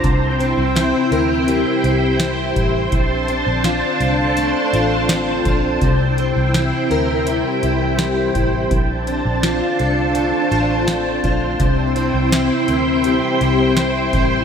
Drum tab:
HH |xxxxxxxx|xxxxxxxx|xxxxxxxx|xxxxxxxx|
SD |--o---o-|--o---o-|--o---o-|--o---o-|
BD |o------o|o------o|o------o|o------o|

HH |xxxxxxxx|
SD |--o---o-|
BD |o------o|